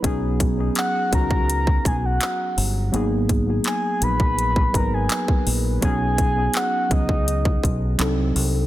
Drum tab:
HH |x-x-x-x-x-x-x-o-|x-x-x-x-x-x-x-o-|x-x-x-x-x-x-x-o-|
CP |----x-------x---|----x-------x---|----x-------x---|
BD |o-o---oo-oo-----|--o----o-oo--o--|o-o---oo-oo-----|